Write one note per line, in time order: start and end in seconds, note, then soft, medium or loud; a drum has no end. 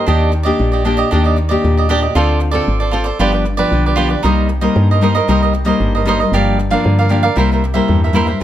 0.06 0.52 D#2 loud
0.06 0.57 D#3 medium
0.06 0.32 A#3 medium
0.06 0.31 D4 medium
0.06 0.32 D4 medium
0.06 0.31 G4 medium
0.06 0.32 G4 medium
0.06 0.32 D5 medium
0.06 0.32 D#5 medium
0.32 muted cavaquinho stroke soft
0.43 0.81 A#3 medium
0.43 0.81 D4 medium
0.43 0.71 G4 medium
0.43 0.81 G4 medium
0.43 0.70 D5 medium
0.43 0.71 D#5 medium
0.59 1.04 A#1 medium
0.59 1.09 A#2 medium
0.72 0.84 G4 soft
0.72 0.84 D5 soft
0.72 0.85 D#5 soft
0.85 1.07 A#3 medium
0.85 0.97 D4 medium
0.85 1.07 D4 medium
0.85 0.97 G4 soft
0.85 1.08 G4 medium
0.85 0.96 D5 medium
0.85 0.97 D#5 medium
0.97 1.10 G4 medium
0.97 1.10 D5 medium
0.97 1.10 D#5 medium
1.11 1.56 D#2 medium
1.11 1.62 D#3 medium
1.11 1.37 A#3 medium
1.11 1.23 D4 medium
1.11 1.37 D4 medium
1.11 1.23 G4 medium
1.11 1.37 G4 medium
1.11 1.23 D5 medium
1.11 1.24 D#5 medium
1.24 1.36 G4 soft
1.24 1.36 D5 soft
1.24 1.37 D#5 soft
1.36 muted cavaquinho stroke soft
1.49 1.86 A#3 medium
1.49 1.86 D4 medium
1.49 1.76 G4 medium
1.49 1.86 G4 medium
1.49 1.75 D5 medium
1.49 1.75 D#5 medium
1.64 2.08 D#2 medium
1.64 2.14 A#2 medium
1.77 1.89 G4 soft
1.77 1.89 D5 soft
1.77 1.89 D#5 soft
1.89 2.05 A#3 medium
1.89 2.01 D4 medium
1.89 2.05 D4 medium
1.89 2.05 G4 medium
1.89 2.02 G4 medium
1.89 2.00 D5 medium
1.89 2.01 D#5 medium
2.01 2.15 G4 soft
2.01 2.14 D5 medium
2.01 2.14 D#5 soft
2.15 2.60 D2 loud
2.15 2.65 D3 medium
2.15 2.51 C4 medium
2.15 2.39 F4 medium
2.15 2.51 F4 medium
2.15 2.40 A4 medium
2.15 2.51 A4 medium
2.15 2.40 C5 medium
2.15 2.40 D5 medium
2.40 muted cavaquinho stroke soft
2.51 2.89 C4 medium
2.51 2.89 F4 medium
2.51 2.79 A4 medium
2.51 2.90 A4 medium
2.51 2.79 C5 medium
2.51 2.78 D5 medium
2.67 3.12 G#1 medium
2.80 2.90 A4 soft
2.80 2.92 C5 soft
2.80 2.92 D5 medium
2.91 3.09 C4 medium
2.91 3.05 F4 medium
2.91 3.09 F4 medium
2.91 3.05 A4 soft
2.91 3.09 A4 medium
2.91 3.04 C5 medium
2.91 3.03 D5 medium
3.04 3.19 A4 medium
3.04 3.18 C5 medium
3.04 3.18 D5 medium
3.19 3.64 G1 medium
3.19 3.70 G2 medium
3.19 3.45 F3 medium
3.19 3.45 B3 medium
3.19 3.45 D4 medium
3.19 3.32 F4 medium
3.19 3.32 G4 medium
3.19 3.32 B4 medium
3.19 3.31 D5 medium
3.32 3.44 G4 soft
3.32 3.45 B4 soft
3.32 3.44 D5 soft
3.45 muted cavaquinho stroke soft
3.57 3.94 F3 medium
3.57 3.94 B3 medium
3.57 3.94 D4 medium
3.57 3.84 G4 medium
3.57 3.84 B4 medium
3.57 3.83 D5 medium
3.71 4.16 B1 medium
3.71 4.22 D3 medium
3.86 3.95 G4 soft
3.86 3.96 B4 soft
3.86 3.96 D5 medium
3.96 4.13 F3 medium
3.96 4.13 B3 medium
3.96 4.14 D4 medium
3.96 4.09 F4 medium
3.96 4.09 G4 medium
3.96 4.08 B4 medium
3.96 4.07 D5 medium
4.09 4.23 G4 soft
4.09 4.22 B4 soft
4.09 4.22 D5 medium
4.23 4.68 C2 medium
4.23 4.74 C3 medium
4.23 4.49 G3 medium
4.23 4.49 A#3 medium
4.23 4.48 D#4 medium
4.23 4.49 D#4 medium
4.23 4.48 A#4 medium
4.23 4.48 C5 medium
4.23 4.48 D#5 medium
4.49 muted cavaquinho stroke soft
4.61 4.97 G3 medium
4.61 4.98 A#3 medium
4.61 4.98 D#4 medium
4.61 4.88 A#4 medium
4.61 4.88 C5 medium
4.61 4.87 D#5 medium
4.76 5.20 G2 loud
4.76 5.26 G2 medium
4.91 5.01 A#4 soft
4.91 5.03 C5 medium
4.91 5.02 D#5 medium
5.01 5.17 G3 medium
5.01 5.18 A#3 medium
5.01 5.14 D#4 soft
5.01 5.18 D#4 medium
5.01 5.15 A#4 medium
5.01 5.14 C5 medium
5.01 5.14 D#5 medium
5.15 5.28 A#4 medium
5.15 5.28 C5 medium
5.15 5.27 D#5 medium
5.28 5.73 C2 medium
5.28 5.78 C3 medium
5.28 5.53 G3 medium
5.28 5.53 A#3 medium
5.28 5.41 D#4 medium
5.28 5.53 D#4 medium
5.28 5.41 A#4 medium
5.28 5.41 C5 medium
5.28 5.41 D#5 medium
5.42 5.53 A#4 soft
5.42 5.53 C5 soft
5.42 5.53 D#5 medium
5.53 muted cavaquinho stroke soft
5.65 6.01 G3 medium
5.65 6.01 A#3 medium
5.65 6.02 D#4 medium
5.65 5.93 A#4 medium
5.65 5.92 C5 medium
5.65 5.92 D#5 medium
5.80 6.25 G#1 medium
5.80 6.30 G2 medium
5.95 6.07 A#4 soft
5.95 6.07 C5 soft
5.95 6.06 D#5 medium
6.05 6.21 G3 medium
6.05 6.22 A#3 medium
6.05 6.22 D#4 medium
6.05 6.19 D#4 medium
6.05 6.19 A#4 medium
6.05 6.20 C5 medium
6.05 6.19 D#5 medium
6.20 6.33 A#4 soft
6.20 6.32 C5 soft
6.20 6.32 D#5 soft
6.32 6.76 G1 loud
6.32 6.82 G2 medium
6.32 6.57 F3 soft
6.32 6.57 A#3 soft
6.32 6.58 D4 medium
6.32 6.58 G4 medium
6.32 6.58 A#4 medium
6.32 6.58 D5 medium
6.32 6.59 F5 medium
6.59 muted cavaquinho stroke soft
6.70 7.06 F3 medium
6.70 7.06 A#3 medium
6.70 7.06 D4 medium
6.70 6.97 A#4 medium
6.70 6.97 D5 medium
6.70 6.96 F5 medium
6.84 7.29 G2 loud
6.84 7.34 D3 medium
6.99 7.09 A#4 soft
6.99 7.10 D5 soft
6.99 7.10 F5 medium
7.09 7.25 F3 medium
7.09 7.26 A#3 medium
7.09 7.26 D4 medium
7.09 7.22 G4 soft
7.09 7.23 A#4 medium
7.09 7.22 D5 medium
7.09 7.22 F5 medium
7.23 7.36 A#4 medium
7.23 7.36 D5 medium
7.23 7.35 F5 medium
7.36 7.81 C2 medium
7.36 7.86 C3 medium
7.36 7.61 G3 medium
7.36 7.61 A#3 medium
7.36 7.61 E4 medium
7.36 7.49 E4 medium
7.36 7.49 A#4 medium
7.36 7.50 C5 medium
7.36 7.50 E5 medium
7.52 7.63 A#4 soft
7.52 7.63 C5 soft
7.52 7.63 E5 soft
7.64 muted cavaquinho stroke soft
7.74 8.10 G3 medium
7.74 8.10 A#3 medium
7.74 8.10 E4 medium
7.74 8.01 A#4 medium
7.74 8.00 C5 medium
7.74 8.00 E5 medium
7.88 8.33 E2 medium
7.88 8.38 G2 medium
8.04 8.14 A#4 soft
8.04 8.14 C5 soft
8.04 8.15 E5 soft
8.13 8.29 G3 medium
8.13 8.29 A#3 medium
8.13 8.29 E4 medium
8.13 8.27 E4 medium
8.13 8.27 A#4 medium
8.13 8.26 C5 medium
8.13 8.26 E5 medium
8.27 8.40 A#4 soft
8.27 8.40 C5 soft
8.27 8.39 E5 soft